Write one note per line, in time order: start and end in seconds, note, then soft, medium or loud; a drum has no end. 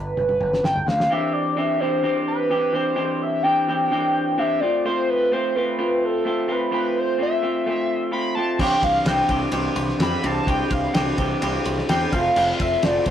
0.00 0.13 G1 medium
0.00 1.10 B3 medium
0.00 1.09 D4 medium
0.00 1.10 G4 medium
0.00 0.64 B4 medium
0.17 0.37 G1 medium
0.17 high tom medium
0.29 high tom medium
0.40 0.60 G1 medium
0.40 mid tom medium
0.53 snare medium
0.63 0.83 G1 medium
0.63 0.89 G5 medium
0.63 snare medium
0.76 mid tom medium
0.87 1.06 D2 medium
0.87 1.14 F5 medium
0.87 snare medium
1.00 snare medium
1.10 1.56 E3 medium
1.10 1.57 C4 medium
1.10 1.56 D4 loud
1.10 1.57 G4 loud
1.10 1.34 E5 loud
1.33 1.60 D5 medium
1.56 1.79 E3 loud
1.56 1.81 C4 loud
1.56 1.80 D4 medium
1.56 1.80 G4 medium
1.56 1.82 E5 medium
1.80 2.02 E3 medium
1.80 2.03 C4 medium
1.80 2.03 D4 loud
1.80 2.03 G4 loud
1.80 2.27 C5 medium
2.03 2.49 E3 medium
2.03 2.50 C4 loud
2.03 2.49 D4 loud
2.03 2.50 G4 loud
2.28 2.76 B4 medium
2.50 2.71 E3 medium
2.50 2.73 C4 medium
2.50 2.73 D4 medium
2.50 2.73 G4 loud
2.73 2.94 E3 medium
2.73 2.96 C4 medium
2.73 2.95 D4 medium
2.73 2.95 G4 loud
2.73 3.23 C5 medium
2.96 3.42 E3 medium
2.96 3.44 C4 loud
2.96 3.43 D4 loud
2.96 3.43 G4 loud
3.22 3.44 E5 loud
3.43 3.67 E3 medium
3.43 3.68 C4 medium
3.43 3.68 D4 loud
3.43 3.68 G4 loud
3.43 4.41 G5 loud
3.68 3.90 E3 medium
3.68 3.92 C4 loud
3.68 3.90 D4 medium
3.68 3.91 G4 loud
3.91 4.37 E3 loud
3.91 4.38 C4 loud
3.91 4.37 D4 loud
3.91 4.38 G4 loud
4.38 4.60 E3 medium
4.38 4.61 C4 medium
4.38 4.60 D4 medium
4.38 4.60 G4 loud
4.38 4.62 E5 loud
4.60 4.85 A3 medium
4.60 4.85 C4 loud
4.60 4.85 F4 loud
4.60 4.84 D5 medium
4.85 5.31 A3 loud
4.85 5.32 C4 loud
4.85 5.32 F4 loud
4.85 5.11 C5 loud
5.09 5.34 B4 loud
5.32 5.56 A3 loud
5.32 5.56 C4 loud
5.32 5.57 F4 loud
5.32 5.57 C5 medium
5.56 5.77 A3 medium
5.56 5.79 C4 medium
5.56 5.78 F4 loud
5.56 6.07 B4 loud
5.78 6.24 A3 medium
5.78 6.26 C4 medium
5.78 6.25 F4 loud
6.05 6.53 A4 loud
6.25 6.47 A3 loud
6.25 6.48 C4 loud
6.25 6.47 F4 loud
6.48 6.70 A3 medium
6.48 6.72 C4 medium
6.48 6.71 F4 medium
6.48 6.73 B4 loud
6.71 7.17 A3 loud
6.71 7.18 C4 loud
6.71 7.18 F4 loud
6.71 7.00 B4 loud
6.98 7.20 C5 loud
7.18 7.41 A3 medium
7.18 7.42 C4 loud
7.18 7.42 F4 loud
7.23 8.10 E5 loud
7.42 7.65 A3 medium
7.42 7.66 C4 medium
7.42 7.66 F4 loud
7.66 8.10 A3 loud
7.66 8.11 C4 loud
7.66 8.11 F4 loud
8.11 8.35 A3 medium
8.11 8.37 C4 medium
8.11 8.36 F4 loud
8.11 8.34 B5 loud
8.35 8.58 A3 medium
8.35 8.60 C4 loud
8.35 8.59 F4 medium
8.35 8.61 A5 loud
8.59 8.75 C2 loud
8.59 9.06 E3 loud
8.59 9.07 C4 medium
8.59 9.07 D4 loud
8.59 9.07 G4 loud
8.59 8.83 G5 loud
8.59 kick loud
8.59 crash loud
8.82 8.98 C2 medium
8.82 9.09 F5 loud
8.82 kick medium
8.82 ride medium
9.05 9.21 C2 medium
9.05 9.28 E3 medium
9.05 9.29 C4 loud
9.05 9.29 D4 medium
9.05 9.29 G4 medium
9.05 9.30 G5 loud
9.05 snare loud
9.05 ride loud
9.29 9.45 C2 medium
9.29 9.51 E3 medium
9.29 9.53 C4 medium
9.29 9.52 D4 loud
9.29 9.52 G4 medium
9.29 kick loud
9.29 ride medium
9.52 9.68 C2 medium
9.52 10.00 E3 loud
9.52 10.01 C4 loud
9.52 10.00 D4 loud
9.52 10.00 G4 loud
9.52 ride loud
9.76 9.91 C2 loud
9.76 ride medium
9.89 snare soft
9.99 10.15 F2 medium
9.99 10.22 E3 medium
9.99 10.23 C4 medium
9.99 10.23 D4 loud
9.99 10.23 G4 medium
9.99 10.28 B5 loud
9.99 snare loud
9.99 ride loud
10.23 10.39 C2 medium
10.23 10.45 E3 medium
10.23 10.46 C4 loud
10.23 10.46 D4 medium
10.23 10.46 G4 medium
10.23 10.51 A5 loud
10.23 ride medium
10.46 10.62 C2 loud
10.46 10.93 E3 loud
10.46 10.93 C4 medium
10.46 10.93 D4 medium
10.46 10.94 G4 loud
10.46 10.73 G5 loud
10.46 kick loud
10.46 ride loud
10.71 10.86 C2 medium
10.71 10.95 F5 medium
10.71 kick loud
10.71 ride medium
10.93 11.11 C2 medium
10.93 11.17 E3 medium
10.93 11.17 C4 medium
10.93 11.17 D4 loud
10.93 11.17 G4 loud
10.93 11.17 G5 medium
10.93 snare loud
10.93 ride loud
11.18 11.33 C2 loud
11.18 11.40 E3 medium
11.18 11.41 C4 loud
11.18 11.41 D4 medium
11.18 11.41 G4 loud
11.18 kick medium
11.18 ride medium
11.41 11.58 C2 medium
11.41 11.87 E3 loud
11.41 11.89 C4 medium
11.41 11.89 D4 medium
11.41 11.89 G4 loud
11.41 ride loud
11.65 11.81 C2 loud
11.65 ride medium
11.78 snare soft
11.89 12.04 E2 medium
11.89 12.11 E3 medium
11.89 12.13 C4 loud
11.89 12.11 D4 medium
11.89 12.11 G4 loud
11.89 12.00 G5 loud
11.89 snare loud
11.89 ride loud
12.12 12.28 F1 medium
12.12 12.36 A3 loud
12.12 12.37 C4 loud
12.12 12.37 F4 loud
12.12 12.34 F5 loud
12.12 kick loud
12.12 ride medium
12.36 12.51 F1 loud
12.36 12.83 A3 loud
12.36 12.84 C4 loud
12.36 12.84 F4 loud
12.36 12.62 F5 loud
12.36 crash loud
12.60 12.75 F1 medium
12.60 12.86 E5 loud
12.60 kick loud
12.60 ride medium
12.83 12.98 F1 medium
12.83 13.06 A3 medium
12.83 13.07 C4 medium
12.83 13.06 F4 loud
12.83 13.08 D5 loud
12.83 snare loud
12.83 ride loud
13.06 13.11 F1 medium
13.06 13.11 A3 medium
13.06 13.11 C4 medium
13.06 13.11 F4 medium
13.06 13.11 C5 medium
13.06 kick loud
13.06 ride medium